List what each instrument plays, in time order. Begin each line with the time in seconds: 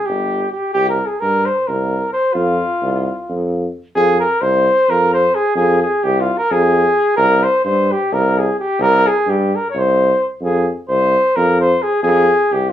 0.05 tuba G1, flugelhorn G4
0.52 flugelhorn G4
0.73 tuba C2, flugelhorn G4
0.89 flugelhorn A#4
1.06 flugelhorn G#4
1.20 tuba G2, flugelhorn A#4
1.45 flugelhorn C5
1.67 tuba C2, flugelhorn A#4
2.13 flugelhorn C5
2.33 tuba F2, flugelhorn F4
2.82 tuba C2
3.29 tuba F2
3.95 tuba F2, flugelhorn G#4
4.20 flugelhorn A#4
4.41 tuba C2, flugelhorn C5
4.89 tuba F2, flugelhorn A#4
5.14 flugelhorn C5
5.35 flugelhorn G#4
5.55 tuba F2, flugelhorn G#4
5.82 flugelhorn G#4
6.03 tuba C2, flugelhorn G4
6.20 flugelhorn F4
6.38 flugelhorn A#4
6.51 tuba F2, flugelhorn G#4
7.16 tuba C2, flugelhorn A#4
7.43 flugelhorn C5
7.65 tuba G2, flugelhorn C5
7.92 flugelhorn G4
8.12 tuba C2, flugelhorn A#4
8.38 flugelhorn G#4
8.59 flugelhorn G4
8.79 tuba C2, flugelhorn A#4
9.06 flugelhorn G#4
9.27 tuba G2, flugelhorn G4
9.55 flugelhorn A#4
9.70 flugelhorn C#5
9.74 tuba C2
9.79 flugelhorn C5
10.41 tuba F2, flugelhorn G#4
10.89 tuba C2, flugelhorn C5
11.36 tuba F2, flugelhorn A#4
11.60 flugelhorn C5
11.82 flugelhorn G#4
12.03 tuba F2, flugelhorn G#4
12.51 tuba C2, flugelhorn G4